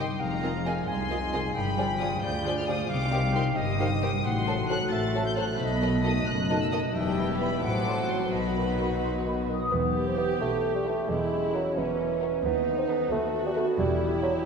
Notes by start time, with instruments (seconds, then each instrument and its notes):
Already playing: double bass section G1, cello section G2, harp C3 D#4 C5, french horn section G3 D#4, clarinet G5
0.00 harp G3, violin section C6
0.21 double bass section F1, cello section F2, harp F2, french horn section G#3, clarinet F5, violin section A#5
0.43 bassoon D#3, viola section C4 F4, violin section G#4 D#5, harp G#4, flute section G#5
0.65 bassoon D#3, viola section C4 F4, harp F4, violin section G#4 D#5 G#5, flute section G#5
0.88 double bass section C2, cello section C2, harp G#4, clarinet G#5, violin section C6
1.10 bassoon D#3, viola section C4 F4, harp F4, violin section G#4 D#5, flute section G#5
1.33 harp C3, bassoon D#3, viola section C4 F4, violin section G#4 D#5, flute section G#5
1.54 double bass section G1, cello section G2, harp G2, french horn section F4, clarinet G5, violin section B5
1.77 bassoon F3, viola section G3 F4, violin section G#4 D5, harp G#4, flute section G#5
1.99 bassoon F3, viola section G3 F4, harp F4, violin section G#4 D5 D#6, flute section G#5
2.22 double bass section D2, cello section D2, harp G#4, clarinet D5, violin section G6
2.45 bassoon F3, viola section G3 F4, harp F4, violin section G#4 D5, flute section G#5
2.58 violin section F6
2.67 harp D3, bassoon F3, viola section G3 F4, violin section G#4 D5 D#6, flute section G#5
2.89 double bass section C2, harp C3, cello section C3, french horn section G3 D#4, clarinet F5, violin section D6
3.11 bassoon D#3, viola section G3 D#4, harp G4, violin section G4 C5, flute section G5
3.33 bassoon D#3, viola section G3 D#4, harp D#4, violin section G4 C5 C6, flute section G5
3.57 double bass section G1, cello section G2, harp G4, clarinet D#5, violin section D#6
3.78 bassoon D#3, viola section G3 D#4, harp D#4, violin section G4 C5, clarinet F5, flute section G5
4.02 bassoon D#3, harp G3, viola section G3 D#4, violin section G4 C5, flute section G5, clarinet G5
4.24 double bass section A1, harp A2, cello section A2, french horn section A3 F#4, clarinet F#5, violin section C6
4.46 viola section F#3 F#4, bassoon F#3, harp F#4, violin section A4 C5, flute section A5
4.69 viola section F#3 F#4, bassoon F#3, harp C4, violin section A4 C5 F#6, flute section A5
4.92 double bass section A1, cello section A2, harp F#4, clarinet E5, violin section A6
5.13 viola section F#3 F#4, bassoon F#3, harp C4, violin section A4 C5, flute section A5
5.26 violin section G6
5.36 viola section F#3 F#4, bassoon F#3, harp A3, violin section A4 C5 F#6, flute section A5
5.59 double bass section B1, cello section B2, harp B2, french horn section D#4, clarinet D#5, violin section B5
5.81 bassoon D#3, viola section F#3 F#4, harp F#4, violin section A4 D#5, flute section A5
6.04 bassoon D#3, viola section F#3 F#4, harp D#4, violin section A4 D#5 D#6, flute section A5
6.26 double bass section F#1, cello section F#2, harp F#4, clarinet D#5, violin section F#6
6.50 bassoon D#3, viola section F#3 F#4, harp D#4, violin section A4 D#5, flute section A5
6.62 violin section E6
6.71 bassoon D#3, viola section F#3 F#4, harp F#3, violin section A4 D#5 D#6, flute section A5
6.94 double bass section E1, harp E2, cello section E2, french horn section G3 B3, viola section G3 E4, violin section G4 B4 G5, clarinet E5
7.18 bassoon E3, harp G3, flute section B5
7.40 bassoon E3, harp B3 E4, violin section B5, flute section B5
7.63 double bass section A1, harp A2, cello section A2, viola section F#3 F#4, french horn section F#3 C4, violin section A4 C5 D6, clarinet F#5
7.87 bassoon F#3, harp F#3, flute section C6
8.10 bassoon F#3, harp C4 F#4, violin section C6, flute section C6
8.33 double bass section B1, harp B2, cello section B2, french horn section D#3 B3, viola section F#3 D#4, violin section F#4 B4 B5, clarinet D#5
8.57 bassoon D#3, harp F#4, flute section B5
8.80 bassoon D#3, harp D#4, flute section B5
9.03 harp F#4, flute section C6
9.26 bassoon D#3, harp D#4, flute section B5
9.49 bassoon D#3, harp F#3, flute section D#6
9.72 double bass section E1, cello section E2, harp E3, bassoon B3, viola section G4
9.96 harp B3
10.07 bassoon C4
10.18 bassoon B3, violin section E4 B4 G5, harp G4
10.41 double bass section B1, cello section B2, bassoon A3, harp B4
10.64 harp G4
10.75 bassoon G3
10.86 bassoon A3, harp B3, violin section E4 B4 G5
11.09 double bass section E1, cello section E2, harp E3, bassoon G#3, viola section E4
11.32 harp C#4
11.54 bassoon F#3, violin section F#4 A#4 F#5, harp A#4
11.77 double bass section E1, cello section E2, bassoon E3, viola section C#4, harp C#5
12.00 harp A#4
12.21 harp C#4, violin section F#4 A#4 F#5
12.45 cello section D#2, double bass section D#2, harp D#3, bassoon B3, viola section D#4
12.68 harp B3
12.79 bassoon C4
12.89 bassoon B3, violin section A4 B4 F#5, harp A4
13.12 double bass section D#2, cello section D#2, bassoon A3, viola section F#4, harp B4
13.35 harp A4
13.47 bassoon G3
13.56 bassoon A3, harp B3, violin section A4 B4 F#5
13.79 double bass section E1, cello section E2, harp E3, bassoon G3, viola section E4
14.01 harp B3
14.23 bassoon F#3, violin section G4 B4 E5, harp G4